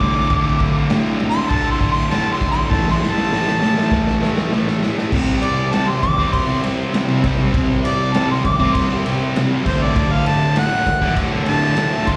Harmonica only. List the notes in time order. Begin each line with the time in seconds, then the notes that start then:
Already playing: D6
1.30 C6
1.50 A5
1.71 C6
1.92 C6
2.12 A5
2.32 C6
2.52 C6
2.71 A5
2.91 C6
3.12 A5
5.42 D5
5.73 A5
5.89 C6
6.02 D6
6.32 C6
7.85 D5
8.13 A5
8.31 C6
8.45 D6
8.75 C6
9.67 C5
9.82 D5
10.12 F5
10.27 A5
10.59 F#5
11.48 A5
12.09 C6